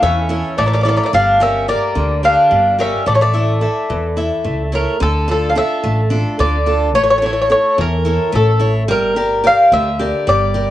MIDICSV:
0, 0, Header, 1, 5, 480
1, 0, Start_track
1, 0, Key_signature, -1, "minor"
1, 0, Tempo, 554017
1, 981, Time_signature, 7, 3, 24, 8
1, 9274, End_track
2, 0, Start_track
2, 0, Title_t, "Bouzouki"
2, 0, Program_c, 0, 25
2, 24, Note_on_c, 0, 76, 91
2, 469, Note_off_c, 0, 76, 0
2, 508, Note_on_c, 0, 74, 90
2, 565, Note_off_c, 0, 74, 0
2, 585, Note_on_c, 0, 74, 65
2, 634, Note_off_c, 0, 74, 0
2, 645, Note_on_c, 0, 74, 68
2, 698, Note_off_c, 0, 74, 0
2, 722, Note_on_c, 0, 74, 59
2, 757, Note_off_c, 0, 74, 0
2, 767, Note_on_c, 0, 74, 72
2, 824, Note_off_c, 0, 74, 0
2, 843, Note_on_c, 0, 74, 63
2, 895, Note_off_c, 0, 74, 0
2, 917, Note_on_c, 0, 74, 70
2, 965, Note_off_c, 0, 74, 0
2, 991, Note_on_c, 0, 77, 102
2, 1232, Note_off_c, 0, 77, 0
2, 1235, Note_on_c, 0, 76, 80
2, 1452, Note_off_c, 0, 76, 0
2, 1462, Note_on_c, 0, 74, 91
2, 1908, Note_off_c, 0, 74, 0
2, 1949, Note_on_c, 0, 77, 93
2, 2391, Note_off_c, 0, 77, 0
2, 2433, Note_on_c, 0, 76, 83
2, 2650, Note_off_c, 0, 76, 0
2, 2662, Note_on_c, 0, 74, 83
2, 2718, Note_off_c, 0, 74, 0
2, 2729, Note_on_c, 0, 73, 70
2, 2785, Note_off_c, 0, 73, 0
2, 2789, Note_on_c, 0, 74, 85
2, 4069, Note_off_c, 0, 74, 0
2, 4116, Note_on_c, 0, 70, 77
2, 4331, Note_off_c, 0, 70, 0
2, 4354, Note_on_c, 0, 69, 92
2, 4570, Note_off_c, 0, 69, 0
2, 4605, Note_on_c, 0, 69, 77
2, 4759, Note_off_c, 0, 69, 0
2, 4762, Note_on_c, 0, 77, 72
2, 4821, Note_off_c, 0, 77, 0
2, 4833, Note_on_c, 0, 76, 95
2, 5511, Note_off_c, 0, 76, 0
2, 5546, Note_on_c, 0, 74, 90
2, 5989, Note_off_c, 0, 74, 0
2, 6021, Note_on_c, 0, 73, 97
2, 6086, Note_off_c, 0, 73, 0
2, 6095, Note_on_c, 0, 73, 67
2, 6144, Note_off_c, 0, 73, 0
2, 6154, Note_on_c, 0, 73, 83
2, 6210, Note_off_c, 0, 73, 0
2, 6220, Note_on_c, 0, 73, 72
2, 6279, Note_off_c, 0, 73, 0
2, 6290, Note_on_c, 0, 73, 73
2, 6340, Note_off_c, 0, 73, 0
2, 6350, Note_on_c, 0, 73, 65
2, 6413, Note_off_c, 0, 73, 0
2, 6426, Note_on_c, 0, 73, 78
2, 6483, Note_off_c, 0, 73, 0
2, 6513, Note_on_c, 0, 73, 86
2, 6729, Note_off_c, 0, 73, 0
2, 6766, Note_on_c, 0, 70, 95
2, 7200, Note_off_c, 0, 70, 0
2, 7238, Note_on_c, 0, 69, 90
2, 7563, Note_off_c, 0, 69, 0
2, 7718, Note_on_c, 0, 70, 95
2, 8202, Note_off_c, 0, 70, 0
2, 8204, Note_on_c, 0, 77, 99
2, 8415, Note_off_c, 0, 77, 0
2, 8433, Note_on_c, 0, 76, 101
2, 8873, Note_off_c, 0, 76, 0
2, 8912, Note_on_c, 0, 74, 96
2, 9274, Note_off_c, 0, 74, 0
2, 9274, End_track
3, 0, Start_track
3, 0, Title_t, "Steel-string acoustic guitar"
3, 0, Program_c, 1, 25
3, 0, Note_on_c, 1, 64, 48
3, 0, Note_on_c, 1, 69, 43
3, 0, Note_on_c, 1, 73, 47
3, 24, Note_on_c, 1, 52, 68
3, 165, Note_off_c, 1, 64, 0
3, 168, Note_off_c, 1, 69, 0
3, 168, Note_off_c, 1, 73, 0
3, 253, Note_on_c, 1, 64, 56
3, 260, Note_on_c, 1, 69, 46
3, 263, Note_on_c, 1, 73, 59
3, 488, Note_off_c, 1, 52, 0
3, 505, Note_on_c, 1, 57, 71
3, 641, Note_off_c, 1, 64, 0
3, 643, Note_off_c, 1, 69, 0
3, 646, Note_off_c, 1, 73, 0
3, 734, Note_on_c, 1, 64, 51
3, 738, Note_on_c, 1, 69, 46
3, 744, Note_on_c, 1, 73, 55
3, 929, Note_off_c, 1, 64, 0
3, 931, Note_off_c, 1, 69, 0
3, 935, Note_off_c, 1, 73, 0
3, 969, Note_off_c, 1, 57, 0
3, 978, Note_on_c, 1, 55, 76
3, 1210, Note_off_c, 1, 55, 0
3, 1214, Note_on_c, 1, 67, 51
3, 1221, Note_on_c, 1, 74, 60
3, 1222, Note_on_c, 1, 70, 43
3, 1446, Note_off_c, 1, 67, 0
3, 1450, Note_off_c, 1, 70, 0
3, 1452, Note_off_c, 1, 74, 0
3, 1456, Note_on_c, 1, 67, 49
3, 1458, Note_on_c, 1, 70, 44
3, 1466, Note_on_c, 1, 74, 45
3, 1691, Note_on_c, 1, 50, 67
3, 1842, Note_off_c, 1, 67, 0
3, 1844, Note_off_c, 1, 70, 0
3, 1846, Note_off_c, 1, 74, 0
3, 1932, Note_on_c, 1, 67, 55
3, 1936, Note_on_c, 1, 70, 45
3, 1940, Note_on_c, 1, 74, 58
3, 2161, Note_off_c, 1, 50, 0
3, 2171, Note_on_c, 1, 55, 69
3, 2320, Note_off_c, 1, 67, 0
3, 2320, Note_off_c, 1, 70, 0
3, 2324, Note_off_c, 1, 74, 0
3, 2411, Note_on_c, 1, 67, 46
3, 2416, Note_on_c, 1, 70, 45
3, 2421, Note_on_c, 1, 74, 51
3, 2607, Note_off_c, 1, 67, 0
3, 2610, Note_off_c, 1, 70, 0
3, 2613, Note_off_c, 1, 74, 0
3, 2641, Note_off_c, 1, 55, 0
3, 2651, Note_on_c, 1, 57, 78
3, 2887, Note_on_c, 1, 64, 52
3, 2894, Note_on_c, 1, 69, 39
3, 2896, Note_on_c, 1, 76, 56
3, 3117, Note_off_c, 1, 64, 0
3, 3121, Note_off_c, 1, 57, 0
3, 3121, Note_off_c, 1, 69, 0
3, 3124, Note_off_c, 1, 76, 0
3, 3127, Note_on_c, 1, 64, 48
3, 3130, Note_on_c, 1, 69, 40
3, 3138, Note_on_c, 1, 76, 48
3, 3377, Note_on_c, 1, 52, 68
3, 3516, Note_off_c, 1, 64, 0
3, 3519, Note_off_c, 1, 69, 0
3, 3520, Note_off_c, 1, 76, 0
3, 3610, Note_on_c, 1, 64, 57
3, 3617, Note_on_c, 1, 69, 40
3, 3618, Note_on_c, 1, 76, 59
3, 3843, Note_off_c, 1, 52, 0
3, 3850, Note_on_c, 1, 57, 69
3, 3998, Note_off_c, 1, 64, 0
3, 4000, Note_off_c, 1, 69, 0
3, 4003, Note_off_c, 1, 76, 0
3, 4090, Note_on_c, 1, 64, 48
3, 4095, Note_on_c, 1, 69, 43
3, 4101, Note_on_c, 1, 73, 50
3, 4286, Note_off_c, 1, 64, 0
3, 4289, Note_off_c, 1, 73, 0
3, 4290, Note_off_c, 1, 69, 0
3, 4320, Note_off_c, 1, 57, 0
3, 4333, Note_on_c, 1, 50, 74
3, 4574, Note_on_c, 1, 62, 53
3, 4581, Note_on_c, 1, 65, 41
3, 4582, Note_on_c, 1, 69, 56
3, 4801, Note_off_c, 1, 50, 0
3, 4803, Note_off_c, 1, 62, 0
3, 4803, Note_off_c, 1, 65, 0
3, 4809, Note_off_c, 1, 69, 0
3, 4812, Note_on_c, 1, 62, 44
3, 4818, Note_on_c, 1, 65, 45
3, 4819, Note_on_c, 1, 69, 54
3, 5057, Note_on_c, 1, 57, 64
3, 5199, Note_off_c, 1, 62, 0
3, 5199, Note_off_c, 1, 65, 0
3, 5203, Note_off_c, 1, 69, 0
3, 5287, Note_on_c, 1, 62, 56
3, 5293, Note_on_c, 1, 69, 55
3, 5294, Note_on_c, 1, 65, 43
3, 5523, Note_off_c, 1, 57, 0
3, 5536, Note_on_c, 1, 50, 75
3, 5676, Note_off_c, 1, 62, 0
3, 5677, Note_off_c, 1, 65, 0
3, 5679, Note_off_c, 1, 69, 0
3, 5771, Note_on_c, 1, 62, 45
3, 5776, Note_on_c, 1, 65, 37
3, 5779, Note_on_c, 1, 69, 52
3, 5967, Note_off_c, 1, 62, 0
3, 5967, Note_off_c, 1, 65, 0
3, 5971, Note_off_c, 1, 69, 0
3, 6002, Note_off_c, 1, 50, 0
3, 6020, Note_on_c, 1, 57, 75
3, 6256, Note_on_c, 1, 64, 52
3, 6259, Note_on_c, 1, 69, 48
3, 6265, Note_on_c, 1, 73, 50
3, 6485, Note_off_c, 1, 57, 0
3, 6486, Note_off_c, 1, 64, 0
3, 6490, Note_off_c, 1, 69, 0
3, 6492, Note_off_c, 1, 73, 0
3, 6497, Note_on_c, 1, 64, 47
3, 6500, Note_on_c, 1, 69, 46
3, 6507, Note_on_c, 1, 73, 46
3, 6742, Note_on_c, 1, 52, 68
3, 6881, Note_off_c, 1, 64, 0
3, 6883, Note_off_c, 1, 69, 0
3, 6885, Note_off_c, 1, 73, 0
3, 6975, Note_on_c, 1, 64, 52
3, 6977, Note_on_c, 1, 69, 54
3, 6986, Note_on_c, 1, 73, 56
3, 7206, Note_off_c, 1, 52, 0
3, 7213, Note_on_c, 1, 57, 70
3, 7360, Note_off_c, 1, 64, 0
3, 7363, Note_off_c, 1, 69, 0
3, 7364, Note_off_c, 1, 73, 0
3, 7447, Note_on_c, 1, 64, 48
3, 7456, Note_on_c, 1, 73, 54
3, 7457, Note_on_c, 1, 69, 43
3, 7645, Note_off_c, 1, 64, 0
3, 7647, Note_off_c, 1, 69, 0
3, 7649, Note_off_c, 1, 73, 0
3, 7681, Note_off_c, 1, 57, 0
3, 7696, Note_on_c, 1, 55, 79
3, 7935, Note_off_c, 1, 55, 0
3, 7939, Note_on_c, 1, 67, 55
3, 7942, Note_on_c, 1, 70, 47
3, 7948, Note_on_c, 1, 74, 53
3, 8168, Note_off_c, 1, 67, 0
3, 8170, Note_off_c, 1, 70, 0
3, 8173, Note_off_c, 1, 74, 0
3, 8176, Note_on_c, 1, 67, 54
3, 8184, Note_on_c, 1, 74, 53
3, 8185, Note_on_c, 1, 70, 44
3, 8422, Note_on_c, 1, 50, 67
3, 8563, Note_off_c, 1, 67, 0
3, 8564, Note_off_c, 1, 70, 0
3, 8566, Note_off_c, 1, 74, 0
3, 8658, Note_on_c, 1, 67, 56
3, 8667, Note_on_c, 1, 70, 43
3, 8667, Note_on_c, 1, 74, 65
3, 8886, Note_off_c, 1, 50, 0
3, 8895, Note_on_c, 1, 55, 71
3, 9044, Note_off_c, 1, 67, 0
3, 9046, Note_off_c, 1, 70, 0
3, 9048, Note_off_c, 1, 74, 0
3, 9131, Note_on_c, 1, 67, 47
3, 9139, Note_on_c, 1, 70, 39
3, 9139, Note_on_c, 1, 74, 51
3, 9274, Note_off_c, 1, 55, 0
3, 9274, Note_off_c, 1, 67, 0
3, 9274, Note_off_c, 1, 70, 0
3, 9274, Note_off_c, 1, 74, 0
3, 9274, End_track
4, 0, Start_track
4, 0, Title_t, "Bouzouki"
4, 0, Program_c, 2, 25
4, 28, Note_on_c, 2, 61, 74
4, 471, Note_off_c, 2, 61, 0
4, 502, Note_on_c, 2, 57, 75
4, 562, Note_off_c, 2, 57, 0
4, 572, Note_on_c, 2, 58, 54
4, 625, Note_off_c, 2, 58, 0
4, 635, Note_on_c, 2, 58, 61
4, 690, Note_off_c, 2, 58, 0
4, 701, Note_on_c, 2, 58, 51
4, 759, Note_off_c, 2, 58, 0
4, 770, Note_on_c, 2, 58, 57
4, 826, Note_off_c, 2, 58, 0
4, 835, Note_on_c, 2, 58, 54
4, 885, Note_off_c, 2, 58, 0
4, 895, Note_on_c, 2, 58, 58
4, 953, Note_off_c, 2, 58, 0
4, 987, Note_on_c, 2, 62, 79
4, 1207, Note_off_c, 2, 62, 0
4, 1223, Note_on_c, 2, 61, 78
4, 1445, Note_off_c, 2, 61, 0
4, 1462, Note_on_c, 2, 58, 72
4, 1907, Note_off_c, 2, 58, 0
4, 1944, Note_on_c, 2, 62, 80
4, 2388, Note_off_c, 2, 62, 0
4, 2425, Note_on_c, 2, 61, 71
4, 2646, Note_off_c, 2, 61, 0
4, 2660, Note_on_c, 2, 57, 61
4, 2714, Note_off_c, 2, 57, 0
4, 2724, Note_on_c, 2, 57, 54
4, 2770, Note_off_c, 2, 57, 0
4, 2780, Note_on_c, 2, 57, 62
4, 4064, Note_off_c, 2, 57, 0
4, 9274, End_track
5, 0, Start_track
5, 0, Title_t, "Upright bass"
5, 0, Program_c, 3, 32
5, 21, Note_on_c, 3, 40, 94
5, 357, Note_off_c, 3, 40, 0
5, 505, Note_on_c, 3, 33, 89
5, 840, Note_off_c, 3, 33, 0
5, 982, Note_on_c, 3, 31, 92
5, 1485, Note_off_c, 3, 31, 0
5, 1696, Note_on_c, 3, 38, 86
5, 2033, Note_off_c, 3, 38, 0
5, 2181, Note_on_c, 3, 31, 84
5, 2516, Note_off_c, 3, 31, 0
5, 2655, Note_on_c, 3, 33, 91
5, 3160, Note_off_c, 3, 33, 0
5, 3379, Note_on_c, 3, 40, 87
5, 3715, Note_off_c, 3, 40, 0
5, 3855, Note_on_c, 3, 37, 89
5, 4192, Note_off_c, 3, 37, 0
5, 4340, Note_on_c, 3, 38, 92
5, 4843, Note_off_c, 3, 38, 0
5, 5058, Note_on_c, 3, 33, 83
5, 5394, Note_off_c, 3, 33, 0
5, 5538, Note_on_c, 3, 38, 89
5, 6021, Note_off_c, 3, 38, 0
5, 6021, Note_on_c, 3, 33, 95
5, 6524, Note_off_c, 3, 33, 0
5, 6743, Note_on_c, 3, 40, 90
5, 7077, Note_off_c, 3, 40, 0
5, 7224, Note_on_c, 3, 33, 92
5, 7703, Note_off_c, 3, 33, 0
5, 7703, Note_on_c, 3, 31, 96
5, 8205, Note_off_c, 3, 31, 0
5, 8419, Note_on_c, 3, 38, 88
5, 8755, Note_off_c, 3, 38, 0
5, 8901, Note_on_c, 3, 31, 93
5, 9274, Note_off_c, 3, 31, 0
5, 9274, End_track
0, 0, End_of_file